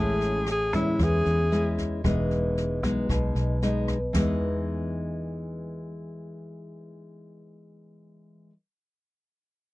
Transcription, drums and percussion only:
0.21 snare
0.46 cross-stick, snare
0.73 kick, snare
0.99 kick, cross-stick, snare
1.25 snare
1.52 snare
1.78 kick, snare
2.04 kick, cross-stick, snare
2.31 snare
2.57 snare
2.83 kick, snare
3.09 kick, cross-stick, snare
3.36 snare
3.62 snare
3.88 kick, cross-stick, snare
4.14 kick, snare, splash

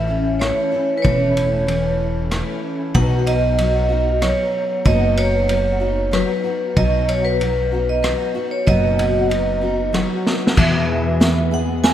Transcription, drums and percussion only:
0.41 cross-stick, ride
1.05 kick, ride
1.37 ride
1.68 ride
2.31 cross-stick, ride
2.95 kick, ride
3.27 ride
3.58 ride
4.22 cross-stick, ride
4.85 kick, ride
5.17 ride
5.49 ride
6.13 cross-stick, ride
6.77 kick, ride
7.09 ride
7.41 ride
8.04 cross-stick, ride
8.67 kick, ride
8.99 ride
9.31 ride
9.94 cross-stick, ride
10.26 snare
10.47 snare
10.57 kick, crash
11.21 snare, closed hi-hat
11.84 snare, closed hi-hat

